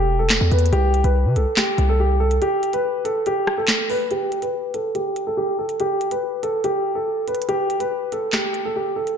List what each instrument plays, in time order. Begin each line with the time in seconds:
Already playing: 808-style bass E1, grand piano G4
0.19 grand piano A4
0.30 snare, clap
0.41 808-style bass E2
0.52 808-style bass E2, grand piano B4, closed hi-hat
0.59 closed hi-hat
0.66 closed hi-hat
0.73 808-style bass C2, grand piano G4, closed hi-hat
0.94 closed hi-hat
1.04 808-style bass C2, grand piano B4, closed hi-hat
1.25 808-style bass C3
1.36 808-style bass C2, grand piano A4, closed hi-hat
1.57 grand piano G4, snare, clap, closed hi-hat
1.78 808-style bass C2, closed hi-hat
1.89 grand piano A4
2.00 grand piano G4
2.20 grand piano A4
2.31 closed hi-hat
2.42 grand piano G4, closed hi-hat
2.63 closed hi-hat
2.73 grand piano B4, closed hi-hat
3.05 grand piano A4, closed hi-hat
3.26 grand piano G4, closed hi-hat
3.47 cross-stick
3.58 grand piano A4
3.68 snare, clap
3.90 grand piano B4, open hi-hat
4.11 grand piano G4, closed hi-hat
4.32 closed hi-hat
4.42 grand piano B4, closed hi-hat
4.74 grand piano A4, closed hi-hat
4.95 grand piano G4, closed hi-hat
5.16 closed hi-hat
5.27 grand piano A4
5.37 grand piano G4
5.59 grand piano A4
5.69 closed hi-hat
5.80 grand piano G4, closed hi-hat
6.01 closed hi-hat
6.11 grand piano B4, closed hi-hat
6.43 grand piano A4, closed hi-hat
6.64 grand piano G4, closed hi-hat
6.95 grand piano A4
7.28 grand piano B4, closed hi-hat
7.35 closed hi-hat
7.42 closed hi-hat
7.49 grand piano G4, closed hi-hat
7.70 closed hi-hat
7.80 grand piano B4, closed hi-hat
8.12 grand piano A4, closed hi-hat
8.33 grand piano G4, snare, clap, closed hi-hat
8.54 closed hi-hat
8.65 grand piano A4
8.76 grand piano G4
8.96 grand piano A4
9.07 closed hi-hat